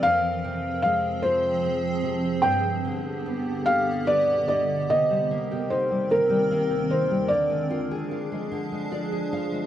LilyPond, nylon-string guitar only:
\new Staff \with { instrumentName = "Nylon-string guitar" } { \time 6/8 \key c \minor \tempo 4. = 50 << { r2. | r2 b'8 ees''8 | r2. | r2 d''8 f''8 | } \\ { f,8 c8 aes8 f'8 c'8 c8 | g,8 d8 b8 g'8 d''8 d8 | c16 g16 bes16 g'16 ees'16 g16 c16 g16 bes16 g'16 ees'16 g16 | d16 aes16 f'16 aes'16 f'16 aes16 d16 aes16 f'16 aes'16 f'16 aes16 | } >> }